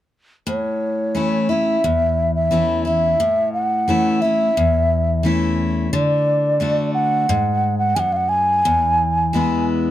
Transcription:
0.47 steel-string acoustic guitar A2, flute C#5
1.15 steel-string acoustic guitar E3 A3 C#4 E4
1.49 steel-string acoustic guitar C#4 E4, flute E5
1.84 steel-string acoustic guitar E2
2.35 flute E5
2.51 steel-string acoustic guitar E3 A3 C#4 E4
2.85 steel-string acoustic guitar C#4 E4, flute E5
3.20 steel-string acoustic guitar A2
3.53 flute F#5
3.88 steel-string acoustic guitar E3 A3 C#4 E4
4.21 steel-string acoustic guitar C#4 E4, flute E5
4.57 steel-string acoustic guitar E2
5.23 steel-string acoustic guitar E3 A3 C#4 E4
5.92 steel-string acoustic guitar D3, flute D5
6.60 steel-string acoustic guitar D3 A3 D4 F#4
6.94 flute F#5
7.29 steel-string acoustic guitar G#2
7.78 flute F#5
7.95 steel-string acoustic guitar F#2, flute F#5 G#5
8.12 flute F5 F#5
8.29 flute G#5
8.65 steel-string acoustic guitar E2
9.33 steel-string acoustic guitar E3 G#3 B3 E4

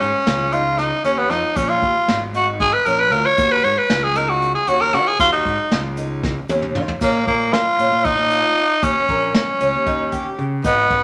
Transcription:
0.00 fingered electric bass G#2, tenor saxophone C#4, closed hi-hat, shaker
0.26 fingered electric bass C#2, twelve-string acoustic guitar F4, snare, closed hi-hat
0.53 twelve-string acoustic guitar D#4, tenor saxophone F4, closed hi-hat, shaker
0.78 tenor saxophone D#4, snare, closed hi-hat
1.04 fingered electric bass D#2, twelve-string acoustic guitar C#4, tenor saxophone C#4, snare, closed hi-hat, shaker
1.18 tenor saxophone B3
1.30 fingered electric bass F2, tenor saxophone D#4, twelve-string acoustic guitar F4, snare, closed hi-hat
1.56 fingered electric bass A#1, tenor saxophone C#4, twelve-string acoustic guitar G#4, kick, closed hi-hat, shaker
1.69 tenor saxophone F4
1.82 fingered electric bass D#2, kick, closed hi-hat
2.08 fingered electric bass G#1, twelve-string acoustic guitar F4, snare, closed hi-hat
2.34 twelve-string acoustic guitar D#4, tenor saxophone F#4, closed hi-hat, shaker
2.60 tenor saxophone G#4, kick, closed hi-hat
2.73 tenor saxophone B4
2.86 fingered electric bass A#1, twelve-string acoustic guitar C#4, tenor saxophone A#4, closed hi-hat, shaker
3.00 tenor saxophone B4
3.12 fingered electric bass D2, twelve-string acoustic guitar F4, tenor saxophone A#4, closed hi-hat
3.25 tenor saxophone C#5
3.38 fingered electric bass D#2, twelve-string acoustic guitar F#4, kick, closed hi-hat, shaker
3.52 tenor saxophone B4
3.64 fingered electric bass G#2, tenor saxophone C#5, closed hi-hat, shaker
3.78 tenor saxophone B4
3.90 fingered electric bass C#2, twelve-string acoustic guitar F4, snare, closed hi-hat
4.04 tenor saxophone G#4
4.15 twelve-string acoustic guitar D#4, tenor saxophone A#4, snare, closed hi-hat, shaker
4.29 tenor saxophone F#4
4.42 closed hi-hat
4.55 tenor saxophone G#4
4.67 fingered electric bass D#2, twelve-string acoustic guitar C#4, tenor saxophone F#4, closed hi-hat, shaker
4.81 tenor saxophone A#4
4.93 fingered electric bass D#3, twelve-string acoustic guitar F4, tenor saxophone F#4, snare, closed hi-hat
5.07 tenor saxophone G#4
5.19 fingered electric bass D#2, tenor saxophone F4, twelve-string acoustic guitar F#4, kick, closed hi-hat, shaker
5.32 tenor saxophone D#4
5.45 fingered electric bass G#2, kick, closed hi-hat
5.71 fingered electric bass C#2, twelve-string acoustic guitar F4, snare, closed hi-hat, shaker
5.97 twelve-string acoustic guitar D#4, closed hi-hat, shaker
6.23 kick, snare, shaker
6.49 fingered electric bass D#2, twelve-string acoustic guitar C#4, high tom, shaker
6.62 mid tom
6.75 fingered electric bass D#3, twelve-string acoustic guitar F4, mid tom
6.88 floor tom
7.01 fingered electric bass A#2, tenor saxophone A#3, twelve-string acoustic guitar C#4, kick, crash, shaker
7.27 fingered electric bass A#2, tenor saxophone A#3, twelve-string acoustic guitar A#3, kick, closed hi-hat
7.53 tenor saxophone F4, snare, closed hi-hat
7.79 fingered electric bass A#2, twelve-string acoustic guitar C#4, closed hi-hat, shaker
7.92 fingered electric bass A#2
8.05 tenor saxophone D#4, twelve-string acoustic guitar D#4, kick, closed hi-hat
8.18 fingered electric bass A#2
8.31 twelve-string acoustic guitar F4, closed hi-hat, shaker
8.57 closed hi-hat
8.83 fingered electric bass D#2, twelve-string acoustic guitar C#4, tenor saxophone C#4, kick, closed hi-hat, shaker
9.08 fingered electric bass A#1, twelve-string acoustic guitar A#3, kick, closed hi-hat
9.34 tenor saxophone C#4, snare, closed hi-hat
9.60 fingered electric bass C#2, twelve-string acoustic guitar C#4, closed hi-hat, shaker
9.74 fingered electric bass D#2
9.86 twelve-string acoustic guitar D#4, kick, closed hi-hat
10.12 twelve-string acoustic guitar G4, kick, closed hi-hat, shaker
10.38 fingered electric bass C#3, closed hi-hat
10.64 fingered electric bass G#1, tenor saxophone B3, twelve-string acoustic guitar D#4, kick, closed hi-hat, shaker
10.90 fingered electric bass G#1, twelve-string acoustic guitar B3, kick, closed hi-hat

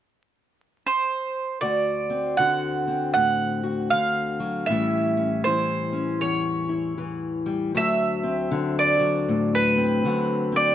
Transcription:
0.86 mandolin C5
1.61 steel-string acoustic guitar D2 F#4, mandolin D5
2.10 steel-string acoustic guitar C4
2.37 steel-string acoustic guitar D3 F#4, mandolin F#5
2.87 steel-string acoustic guitar C4
3.14 steel-string acoustic guitar A2, mandolin F#5
3.63 steel-string acoustic guitar F#4
3.90 steel-string acoustic guitar D3, mandolin F5
4.40 steel-string acoustic guitar F#3
4.66 steel-string acoustic guitar A2 E3, mandolin E5
4.70 steel-string acoustic guitar G3 C#4 E4
5.17 steel-string acoustic guitar C#4
5.44 steel-string acoustic guitar E3 E4, mandolin C5
5.92 steel-string acoustic guitar C#4
6.21 steel-string acoustic guitar E2, mandolin C#5
6.69 steel-string acoustic guitar E4
6.98 steel-string acoustic guitar E3
7.46 steel-string acoustic guitar G3
7.75 steel-string acoustic guitar D2 F#3, mandolin E5
8.23 steel-string acoustic guitar C4
8.51 steel-string acoustic guitar D3
8.79 mandolin D5
8.99 steel-string acoustic guitar F#3
9.28 steel-string acoustic guitar A2
9.55 mandolin B4
9.76 steel-string acoustic guitar C4
10.05 steel-string acoustic guitar D3 F#3
10.52 steel-string acoustic guitar C4, mandolin D5

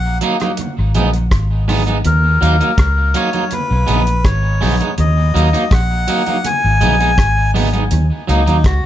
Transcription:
Already playing: fingered electric bass A#1, melodica F#5
0.21 clean electric guitar F#3 A#3 D#4, closed hi-hat
0.40 clean electric guitar F#3 A#3 D#4, cross-stick, closed hi-hat, high conga
0.57 closed hi-hat, low conga
0.78 fingered electric bass G#1
0.94 fingered electric bass A#1, clean electric guitar G#3 B3 D#4, closed hi-hat, high conga, low conga
1.13 closed hi-hat
1.31 fingered electric bass G#1, kick, cross-stick, closed hi-hat
1.68 clean electric guitar G#3 B3 D#4, open hi-hat, high conga, low conga
1.87 clean electric guitar G#3 B3 D#4, closed hi-hat, high conga
2.04 fingered electric bass D#2, melodica A#4, closed hi-hat, low conga
2.41 fingered electric bass D#2, clean electric guitar F#3 A#3 D#4, closed hi-hat
2.60 clean electric guitar F#3 A#3 D#4, closed hi-hat, high conga
2.78 fingered electric bass C#2, kick, cross-stick, closed hi-hat
3.14 clean electric guitar F#3 A#3 D#4, melodica C#5, closed hi-hat
3.33 clean electric guitar F#3 A#3 D#4, closed hi-hat, high conga
3.51 melodica B4, closed hi-hat, low conga
3.71 fingered electric bass B1
3.87 fingered electric bass A#1, clean electric guitar G#3 B3 D#4, closed hi-hat, high conga, low conga
4.07 closed hi-hat
4.25 fingered electric bass G#1, melodica C#5, kick, cross-stick, closed hi-hat
4.61 fingered electric bass A#1, clean electric guitar G#3 B3 D#4, open hi-hat, high conga, low conga
4.80 clean electric guitar G#3 B3 D#4, closed hi-hat, high conga
4.98 fingered electric bass D#2, melodica D#5, closed hi-hat, low conga
5.34 fingered electric bass D#2, clean electric guitar F#3 A#3 D#4, closed hi-hat
5.53 clean electric guitar F#3 A#3 D#4, closed hi-hat, high conga
5.71 fingered electric bass A#1, melodica F#5, kick, cross-stick, closed hi-hat
6.08 clean electric guitar F#3 A#3 D#4, closed hi-hat, high conga
6.26 clean electric guitar F#3 A#3 D#4, closed hi-hat, high conga
6.45 melodica G#5, closed hi-hat, low conga
6.64 fingered electric bass G#1
6.81 fingered electric bass A#1, clean electric guitar G#3 B3 D#4, closed hi-hat, high conga, low conga
7.00 clean electric guitar G#3 B3 D#4, closed hi-hat
7.18 fingered electric bass G#1, kick, cross-stick, closed hi-hat
7.54 clean electric guitar G#3 B3 D#4, open hi-hat, high conga, low conga
7.73 clean electric guitar G#3 B3 D#4, closed hi-hat, high conga
7.91 fingered electric bass D#2, closed hi-hat, low conga
8.27 fingered electric bass C#2, clean electric guitar F#3 A#3 D#4, melodica D#4, closed hi-hat
8.46 fingered electric bass D#2, clean electric guitar F#3 A#3 D#4, closed hi-hat, high conga
8.64 fingered electric bass C#2, melodica F#4, kick, cross-stick, closed hi-hat

